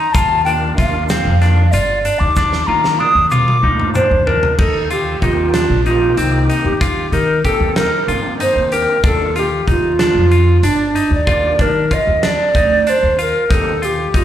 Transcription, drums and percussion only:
0.14 kick, closed hi-hat, shaker
0.46 closed hi-hat
0.78 kick, snare, closed hi-hat, shaker
1.09 snare, closed hi-hat, shaker
1.42 snare, closed hi-hat
1.73 closed hi-hat, shaker
2.05 closed hi-hat
2.36 kick, snare, shaker
2.53 snare
2.84 snare
3.00 high tom
3.31 mid tom, shaker
3.48 mid tom
3.80 mid tom
3.95 mid tom, shaker
4.27 floor tom
4.43 floor tom
4.59 kick, crash
4.90 closed hi-hat
5.22 kick, closed hi-hat
5.54 snare, closed hi-hat
5.86 closed hi-hat
6.17 closed hi-hat
6.49 closed hi-hat
6.81 kick, closed hi-hat
7.13 closed hi-hat
7.44 kick, closed hi-hat
7.76 snare, closed hi-hat
8.08 closed hi-hat
8.40 closed hi-hat
8.72 closed hi-hat
9.04 kick, closed hi-hat
9.36 closed hi-hat
9.67 kick, closed hi-hat
9.99 snare, closed hi-hat
10.31 closed hi-hat
10.63 closed hi-hat
10.96 closed hi-hat
11.27 kick, closed hi-hat
11.59 kick, closed hi-hat
11.91 kick, closed hi-hat
12.23 snare, closed hi-hat
12.55 kick, closed hi-hat
12.87 closed hi-hat
13.19 closed hi-hat
13.51 kick, closed hi-hat
13.83 closed hi-hat
14.14 kick, closed hi-hat

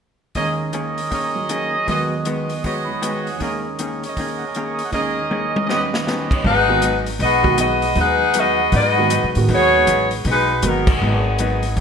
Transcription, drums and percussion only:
0.35 kick, open hi-hat
0.73 closed hi-hat
0.98 open hi-hat
1.11 kick, open hi-hat
1.49 closed hi-hat
1.88 kick, open hi-hat
2.25 closed hi-hat
2.49 open hi-hat
2.64 kick, open hi-hat
3.03 closed hi-hat
3.27 open hi-hat
3.40 kick, open hi-hat
3.79 closed hi-hat
4.03 open hi-hat
4.17 kick, open hi-hat
4.54 closed hi-hat
4.79 open hi-hat
4.92 kick, open hi-hat
5.31 high tom
5.56 high tom
5.69 snare
5.94 snare
6.07 snare
6.31 kick, crash
6.44 kick
6.82 closed hi-hat
7.06 open hi-hat
7.20 kick, open hi-hat
7.44 kick
7.58 closed hi-hat
7.82 open hi-hat
7.95 kick, open hi-hat
8.34 closed hi-hat
8.72 kick, open hi-hat
9.10 closed hi-hat
9.35 open hi-hat
9.49 kick, open hi-hat
9.87 closed hi-hat
10.11 open hi-hat
10.25 kick, open hi-hat
10.62 closed hi-hat
10.87 kick, crash
11.38 closed hi-hat
11.63 open hi-hat
11.77 kick, open hi-hat

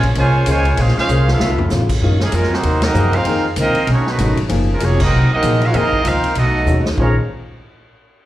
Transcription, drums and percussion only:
0.03 kick, ride
0.15 kick, ride
0.46 kick, hi-hat pedal, ride
0.65 ride
0.77 kick, ride
0.88 snare
0.98 snare
1.09 hi-hat pedal
1.28 snare
1.40 snare
1.58 floor tom
1.70 snare, hi-hat pedal
1.89 kick, crash
2.01 kick
2.20 snare
2.32 kick, hi-hat pedal, ride
2.43 snare
2.54 snare
2.63 kick, ride
2.82 snare, ride
2.94 hi-hat pedal
3.13 ride
3.25 kick, ride
3.56 kick, hi-hat pedal, ride
3.75 ride
3.87 kick, ride
4.07 snare
4.19 kick, hi-hat pedal, ride
4.37 ride
4.49 kick, ride
4.80 kick, hi-hat pedal, ride
5.00 kick, crash
5.42 kick, hi-hat pedal, ride
5.62 ride
5.74 kick, ride
5.93 kick
6.05 kick, hi-hat pedal, ride
6.24 ride
6.35 kick, ride
6.66 hi-hat pedal
6.86 snare
6.98 kick

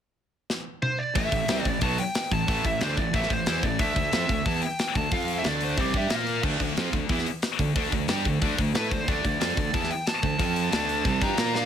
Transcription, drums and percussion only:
0.50 snare
0.82 mid tom
1.15 kick, open hi-hat
1.32 kick, open hi-hat
1.48 snare, open hi-hat
1.65 kick, open hi-hat
1.81 kick, open hi-hat
1.98 open hi-hat
2.15 snare, open hi-hat
2.32 kick, open hi-hat
2.48 kick, open hi-hat
2.65 kick, open hi-hat
2.81 snare, open hi-hat
2.97 kick, open hi-hat
3.14 kick, open hi-hat
3.23 snare
3.30 kick, open hi-hat
3.46 snare, open hi-hat
3.63 kick, open hi-hat
3.79 kick, open hi-hat
3.96 kick, open hi-hat
4.13 snare, open hi-hat
4.29 kick, open hi-hat
4.46 kick, open hi-hat
4.62 open hi-hat
4.79 snare, open hi-hat
4.95 kick, open hi-hat
5.11 kick, open hi-hat
5.28 open hi-hat
5.44 snare, open hi-hat
5.61 open hi-hat
5.77 kick, open hi-hat
5.94 kick, open hi-hat
6.10 snare, open hi-hat
6.27 open hi-hat
6.43 kick, crash
6.60 kick, open hi-hat
6.77 snare, open hi-hat
6.93 kick, open hi-hat
7.09 kick, open hi-hat
7.19 snare
7.26 open hi-hat
7.42 snare, open hi-hat
7.59 kick, open hi-hat
7.76 kick, open hi-hat
7.92 kick, open hi-hat
8.08 snare, open hi-hat
8.25 kick, open hi-hat
8.42 kick, open hi-hat
8.59 kick, open hi-hat
8.75 snare, open hi-hat
8.91 kick, open hi-hat
9.08 kick, open hi-hat
9.25 kick, open hi-hat
9.41 snare, open hi-hat
9.57 kick, open hi-hat
9.74 kick, open hi-hat
9.84 snare
9.91 open hi-hat
10.07 snare, open hi-hat
10.23 kick, open hi-hat
10.39 kick, open hi-hat
10.56 open hi-hat
10.73 snare, open hi-hat
10.89 open hi-hat
11.05 kick, open hi-hat
11.22 kick, open hi-hat
11.38 snare, open hi-hat
11.55 snare

